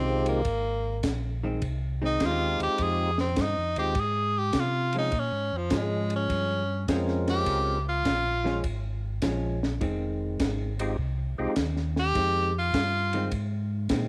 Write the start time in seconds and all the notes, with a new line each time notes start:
Already playing: C2 D#3 G#3 C4 D#4 F4 G4
0.26 A#3, ride
0.45 G#1, kick, ride
1.03 A#1, kick, snare, hi-hat pedal, ride
1.44 D#3 G#3 C4
1.62 C2, kick, ride
2.02 D#3 G#3 C4 D#4
2.20 D#2 G#3 C4 D#4 F4 G4, kick, snare, hi-hat pedal, ride
2.26 F4
2.59 D#2 G4, ride
2.78 F2, kick, ride
2.83 G#4
3.18 C4, snare
3.36 G2, kick, snare, hi-hat pedal, ride
3.41 D#4
3.57 F2
3.76 D#2 G#3 C4 D#4 F4 G4, ride
3.95 G#2, kick, ride
4.00 G#4
4.39 G4
4.53 C3, kick, snare, hi-hat pedal, ride
4.59 F4
4.93 F3 G#3 C#4, ride
4.98 D#4
5.12 A#2, kick, ride
5.19 C#4
5.32 G#2
5.53 F2
5.57 F3
5.70 G#2 F3 G#3 C#4, kick, snare, hi-hat pedal, ride
5.77 G#3
6.10 ride
6.16 C#4
6.30 G2, kick, ride
6.88 F2 G#3 C4 C#4 F4 A#4, kick, snare, hi-hat pedal, ride
7.08 snare
7.28 G4, snare, ride
7.46 C#2, kick, ride
7.89 F4
8.05 A#1, kick, snare, hi-hat pedal, ride
8.44 F3 G#3 C#4, snare
8.64 G#1, kick, ride
9.22 A#1 F3 G#3 C#4, kick, snare, hi-hat pedal, ride
9.63 snare
9.81 F1 D#3 G#3 C4, kick, ride
10.40 G#1, kick, snare, hi-hat pedal, ride
10.79 G#3 C4 D#4 F4 G4, ride
10.98 C2, kick
11.38 C2 G#3 C4 D#4 F4 G4
11.56 D#2, kick, snare, hi-hat pedal, ride
11.77 snare
11.96 G4, snare
12.15 F2 D#3 G#3 C4, kick, ride
12.59 F4
12.73 G2, kick, snare, hi-hat pedal, ride
13.13 D#3 G#3 C4, ride
13.32 G#2, kick, ride
13.89 A#2 D#3 G#3 C4, kick, snare, hi-hat pedal, ride